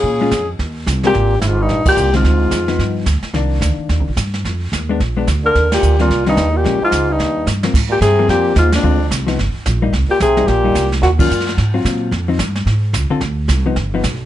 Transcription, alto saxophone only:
X:1
M:4/4
L:1/16
Q:"Swing" 1/4=219
K:Eb
V:1 name="Alto saxophone"
A6 z8 G2- | G3- G/2 _F/2 =F2 E4 G4 F2- | F8- F2 z6 | z16 |
z12 z2 B2- | B2 G4 F4 E4 G2- | G2 F4 E6 z4 | [K:Ab] z2 G2 A4 G4 F2 =D2- |
=D4 z12 | z2 G2 A4 G6 z2 | _G2 F6 z8 | z16 |
z16 |]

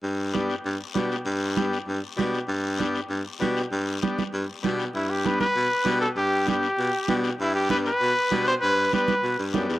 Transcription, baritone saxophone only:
X:1
M:4/4
L:1/8
Q:1/4=196
K:G
V:1 name="Baritone saxophone" clef=bass
G,,4 G,, z B,,2 | G,,4 G,, z B,,2 | G,,4 G,, z B,,2 | G,,2 z2 G,, z B,,2 |
G,,4 B,, z B,,2 | G,,4 B,, z B,,2 | G,,4 B,, z B,,2 | G,,2 z2 B,, G,, F,, E,, |]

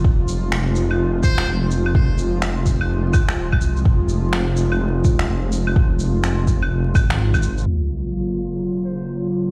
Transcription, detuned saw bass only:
X:1
M:4/4
L:1/8
Q:"Swing 16ths" 1/4=126
K:Fphr
V:1 name="Detuned saw bass" clef=bass
F,,,4- F,,, E,,, F,,,2 | F,,,4- F,,, z E,,, C,, | F,,,4- F,,, E,,, F,,,2 | F,,,4- F,,, A,,,3 |
z8 |]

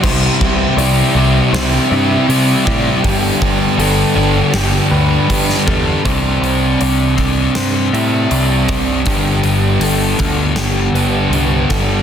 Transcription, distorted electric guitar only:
X:1
M:4/4
L:1/8
Q:1/4=80
K:Clyd
V:1 name="Distorted electric guitar" clef=bass
[C,G,C]2 [C,G,C] [G,C] [C,G,C]2 [C,G,C] [G,C] | [G,,D,G,]2 [G,,D,G,] [D,G,] [G,,D,G,]2 [G,,D,G,] [D,G,] | [C,G,C]3 [C,G,C]4- [C,G,C] | [G,,D,G,]3 [G,,D,G,]4- [G,,D,G,] |]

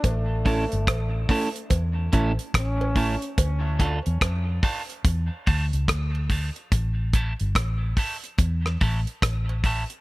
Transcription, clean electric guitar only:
X:1
M:4/4
L:1/8
Q:"Swing 16ths" 1/4=72
K:Aphr
V:1 name="Clean electric guitar"
z [A,^CEA] z [A,CEA] z [A,CEA] z [A,CEA] | z [A,DFA] z [A,DFA] z [A,DFA] z [A,DFA] | z [A,^CEA] z [A,CEA] z [A,CEA] z [A,CEA] |]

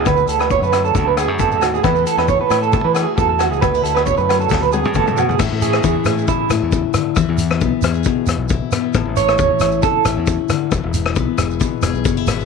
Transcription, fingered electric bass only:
X:1
M:4/4
L:1/16
Q:"Swing 16ths" 1/4=135
K:A
V:1 name="Fingered electric bass" clef=bass
D,,2 D,,3 F,,3 D,,3 F,,3 ^D,,2 | E,,2 z E,,2 z A,,3 E,2 z E,,3 C,, | D,,2 D,,3 F,,3 D,,3 F,,3 B,,2 | A,, A,,3 E,, z A,,2 z2 A,, E,,2 z3 |
E,, E,,3 B,,, z E,,2 z2 E,, B,,,2 z3 | A,,, A,,,3 E,, z A,,,2 z2 A,,, E,,2 z3 | E,,, E,,,3 B,,, z E,,,2 z2 E,,, B,,, F,,,2 G,,,2 |]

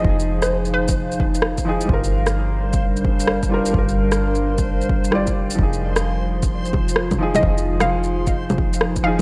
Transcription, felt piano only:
X:1
M:4/4
L:1/8
Q:"Swing 16ths" 1/4=130
K:Fdor
V:1 name="Felt piano"
[F,EA]6- [F,EA] [F,EA] | [G,FB]6- [G,FB] [G,FB] | [G,FB]6 [G,Fd]2 | [F,EA]6- [F,EA] [F,EA] |
[F,EA]6- [F,EA] [F,EA] |]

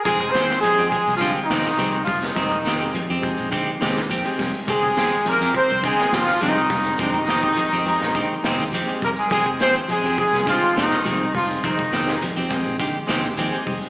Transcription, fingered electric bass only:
X:1
M:4/4
L:1/16
Q:1/4=104
K:Fdor
V:1 name="Fingered electric bass" clef=bass
F,,,2 z3 F,, z C,,2 z F,,, z C,,2 F,,,2 | F,,,4- F,,, F,,2 B,,,2 z F,,, E,,2 z F,,, z | F,,,2 z3 F,, z C,,2 z F,,, z C,,2 F,,,2 | F,,,4- F,,, F,,2 B,,,2 z F,,, E,,2 z F,,, z |
F,,,2 z3 F,, z C,,2 z F,,, z C,,2 F,,,2 | F,,,4- F,,, F,,2 B,,,2 z F,,, E,,2 z F,,, z |]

